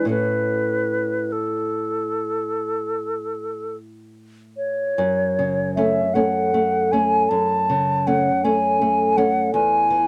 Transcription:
0.05 A2 A3
0.09 C#4 B4
1.32 A4
4.57 C#5
4.98 F#2
5.39 C#3
5.75 A3 C#4 E5
6.14 A3 C#4 F#5
6.54 A3
6.92 A3 C#4 G#5
7.29 F#2 A5
7.70 C#3
8.07 A3 C#4 F#5
8.44 A3 C#4 G#5
8.82 A3
9.17 A3 C#4 F#5
9.54 E2 G#5
9.90 E3

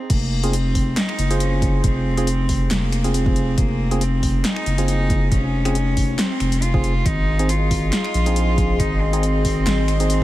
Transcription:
Already playing: C4
0.10 F1 A#3, kick, closed hi-hat, crash
0.43 C4 F4 G#4, closed hi-hat
0.53 C4, closed hi-hat
0.75 kick, open hi-hat
0.97 D#4, snare, clap, closed hi-hat
1.09 finger snap
1.18 F#1, closed hi-hat
1.30 F4 G#4 C5, closed hi-hat
1.40 C#4, closed hi-hat
1.62 kick, closed hi-hat
1.84 F1 C4, kick, closed hi-hat
2.17 C4 F4 G#4, closed hi-hat
2.27 closed hi-hat
2.49 kick, open hi-hat
2.71 F1 A#3, snare, clap, closed hi-hat
2.92 finger snap, closed hi-hat
3.04 C4 F4 G#4, closed hi-hat
3.14 C4, closed hi-hat
3.26 kick
3.36 closed hi-hat
3.58 F1 A#3, kick, closed hi-hat
3.91 C4 F4 G#4, closed hi-hat
4.01 C4, closed hi-hat
4.23 kick, open hi-hat
4.45 D#4, snare, clap, closed hi-hat
4.56 finger snap
4.66 F#1, closed hi-hat
4.78 C4 F4 G#4, closed hi-hat
4.88 D#4, closed hi-hat
5.10 kick, closed hi-hat
5.32 F1 C#4, kick, closed hi-hat
5.65 C4 F4 G#4, finger snap, closed hi-hat
5.75 closed hi-hat
5.97 kick, open hi-hat
6.19 C4, snare, clap, closed hi-hat
6.40 F1, finger snap, closed hi-hat
6.52 closed hi-hat
6.62 F4, closed hi-hat
6.74 C4 F4 G#4, kick
6.84 closed hi-hat
7.06 G#1 D#4 G#4 D#5 C6, kick, closed hi-hat
7.39 C4 D#4 G#4, closed hi-hat
7.49 F4, closed hi-hat
7.71 kick, open hi-hat
7.93 F4, snare, clap, closed hi-hat
8.04 finger snap
8.14 A#1, closed hi-hat
8.26 C4 D#4 G#4, closed hi-hat
8.36 closed hi-hat
8.58 kick, closed hi-hat
8.80 G#1 D#4, kick, closed hi-hat
9.02 C4
9.13 C4 D#4 G#4, closed hi-hat
9.23 closed hi-hat
9.45 kick, open hi-hat
9.66 G#1, snare, clap, closed hi-hat
9.88 finger snap, closed hi-hat
10.00 C4 D#4 G#4, closed hi-hat
10.10 C4, closed hi-hat

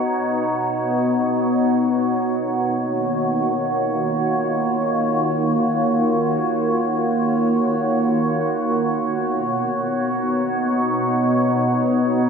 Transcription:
Already playing: B2 B3 D#4 F#4 C#5
2.20 D#3
2.55 A#3
3.56 F4
8.90 B2
9.66 B3
9.96 D#4

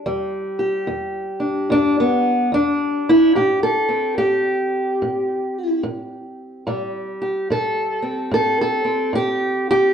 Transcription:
0.06 E2 G3
0.59 G4
0.87 E2
1.40 D4
1.70 E2 D4
2.00 B3
2.52 E2 D4
3.09 E4
3.35 A2 G4
3.63 A4
3.89 C4
4.18 A2 G4
5.02 A2
5.83 A2
6.67 A2 G3
7.22 G4
7.50 A2 A4
8.02 C4
8.31 A2 A4
8.61 A4
8.85 C4
9.13 A2 G4
9.71 G4

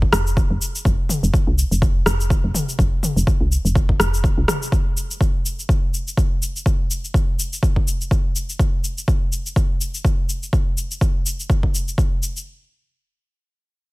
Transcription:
0.02 kick
0.13 F1, cross-stick, shaker
0.27 shaker
0.37 kick, shaker
0.50 F1
0.62 shaker
0.75 shaker
0.85 F1, kick, shaker
1.09 mid tom, shaker
1.23 F1, shaker
1.34 kick, shaker
1.47 C2
1.58 shaker
1.71 F1, shaker
1.82 kick, shaker
2.06 F1, cross-stick, shaker
2.20 shaker
2.30 kick, shaker
2.44 F1
2.55 mid tom, shaker
2.69 shaker
2.79 F1, kick, shaker
3.03 mid tom, shaker
3.16 F1, shaker
3.27 kick, shaker
3.41 C2
3.52 shaker
3.65 F1, shaker
3.75 kick, shaker
3.89 kick
4.00 F1, cross-stick, shaker
4.14 shaker
4.24 kick, shaker
4.38 C2
4.48 cross-stick, mid tom, shaker
4.63 shaker
4.72 kick, shaker
4.97 shaker
5.11 shaker
5.21 kick, shaker
5.46 shaker
5.59 shaker
5.69 kick, shaker
5.94 shaker
6.08 shaker
6.17 kick, shaker
6.42 shaker
6.56 shaker
6.66 kick, shaker
6.91 shaker
7.05 shaker
7.14 kick, shaker
7.39 shaker
7.53 shaker
7.63 kick, shaker
7.76 kick
7.88 shaker
8.01 shaker
8.11 kick, shaker
8.36 shaker
8.49 shaker
8.59 kick, shaker
8.84 shaker
8.98 shaker
9.08 kick, shaker
9.32 shaker
9.46 shaker
9.56 kick, shaker
9.81 shaker
9.94 shaker
10.05 kick, shaker
10.29 shaker
10.43 shaker
10.53 kick, shaker
10.78 shaker
10.91 shaker
11.01 kick, shaker
11.26 shaker
11.40 shaker
11.50 kick, shaker
11.63 kick
11.75 shaker
11.88 shaker
11.98 kick, shaker
12.23 shaker
12.37 shaker

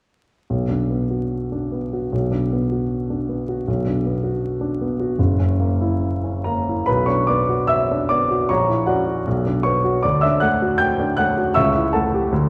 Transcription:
0.50 B1
0.69 D4
0.90 B3
1.10 F#4
1.52 D4
1.72 B3
1.93 F#4
2.12 B1
2.31 D4
2.52 B3
2.72 F#4
3.10 D4
3.29 B3
3.49 F#4
3.68 B1
3.87 D4
4.06 B3
4.24 F#4
4.61 D4
4.81 B3
5.00 F#4
5.19 F#1
5.40 C#4
5.60 A#3
5.81 E4
6.24 C#4
6.44 A#3 A#4 A#5
6.69 E4
6.86 B1 B4 B5
7.06 D4 C#5 C#6
7.27 B3 D5 D6
7.49 F#4
7.67 E5 E6
7.91 D4
8.09 B3 D5 D6
8.31 F#4
8.49 A#1 C#5 A#5 C#6
8.69 E4
8.86 C#4 F#4 D5 F#5
9.08 F#4
9.27 B1
9.46 D4
9.63 B3 C#5 C#6
9.84 F#4
10.03 D2 D5 D6
10.21 D4 E5 E6
10.40 A3 F#5 F#6
10.62 F#4
10.78 G5 G6
10.99 D4
11.17 A3 F#5 F#6
11.38 F#4
11.54 C#2 E5 C#6 E6
11.76 E4
11.93 A3 A4 F#5 A5
12.14 G4
12.32 D2

